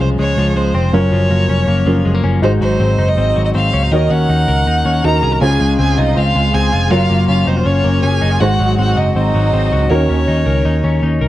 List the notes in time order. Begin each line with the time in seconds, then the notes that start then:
Already playing: C#3 F3 G#3 C#4 F4 G#4
0.00 C2 C5
0.19 C#2 G#3 C#5
0.37 C#2 F3
0.56 C#2 G#3 C5
0.75 F1 C4
0.92 F#1 F#2 F#3 C#4 F4 A#4 C#5
1.12 F#1 F3
1.30 F#1 A#3
1.49 F1 C#4
1.68 F#1 A#3
1.86 F#1 F3 F#3 C#4 F4 A#4
2.05 F#1 G#3
2.15 A#3
2.24 F#1 C#4
2.42 G#1 G#2 D#4 F#4 G#4 C5
2.61 G#1 F#3 C5
2.80 G#1 C4
2.98 F#1 D#4
3.08 D#5
3.17 G#1 C4
3.36 G#1 F#3
3.45 D#5
3.55 G#1 C4 F5
3.73 C#2 C#4
3.83 D#4
3.92 D#2 D#3 D#4 F#4 A#4 C#5 D#5
4.10 D#2 C#4 F#5
4.29 D#2 D#4
4.48 C#2 A#4
4.67 D#2 D#4
4.85 D#2 C#4
5.04 D#2 D#4 F#4 A#4 D#5 A#5
5.23 C2 G#4
5.32 A#4
5.41 C#2 C#3 C#4 F4 G#4 C5 G#5
5.60 C#2 G#3
5.79 C#2 C4 G#4 G#5
5.98 C2 D#4 F4 D#5
6.16 C#2 C4 F4 F5
6.35 C#2 G#3
6.54 C#2 C4 G#4 G#5
6.73 F1 F4
6.90 F#1 F#3 F4 A#4 C#5 F5
7.10 F#1 A#3
7.28 F#1 C#4 F4 F5
7.47 F1 C4 D#4 C5
7.57 F4
7.65 F#1 C#4 C#5
7.84 F#1 A#3
8.03 F#1 C#4 G#4 G#5
8.22 F#1 D#4
8.31 F4
8.40 G#1 G#2 D#4 F#4 G#4 C5 F#5
8.60 G#1 F#3
8.78 G#1 C4 F#4 F#5
8.97 F#1 D#4 F#4 D#5
9.15 G#1 C4 D#4 D#5
9.35 G#1 F#3
9.53 G#1 C4
9.72 C#2 F#4
9.90 D#2 D#3 C#4 D#4 F#4 A#4 C#5
10.09 D#2 C#4
10.28 D#2 D#4
10.46 C#2 A#4
10.65 D#2 D#4
10.84 D#2 C#4
11.03 D#2 D#4
11.21 C2 A#4